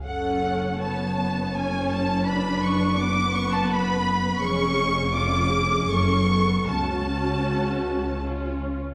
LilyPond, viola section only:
\new Staff \with { instrumentName = "Viola section" } { \time 3/4 \key fis \minor \tempo 4 = 81 << { a'4 cis''4 cis''4 | b'4 b'2 | gis'4 eis'8 gis'8 a'4 | fis'2 eis'8. r16 | } \\ { cis'4 b8 b8 cis'4 | d'4 b2 | cis'4 cis'4 cis'8 b8 | cis'2 cis'8. r16 | } >> }